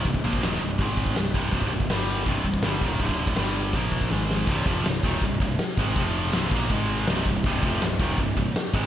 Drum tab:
CC |----------------|----------------|----------------|x-x-x-x-x-x-x-x-|
HH |o---o---o---o---|o---o---o---o---|o---o---o-------|----------------|
SD |----o-------o---|----o-------o---|----o-------o-o-|----o-------o---|
BD |oo-o----o-oo--o-|oo-o----o-oo--o-|oo-o----o-oo----|o-o---o-o-o---o-|

CC |x-x-x-x-x-x-x-x-|x-x-x-x-x-x-x-x-|
HH |----------------|----------------|
SD |----o-------o---|----o-------o---|
BD |o-----o-o-----o-|o-o---o-o-o---o-|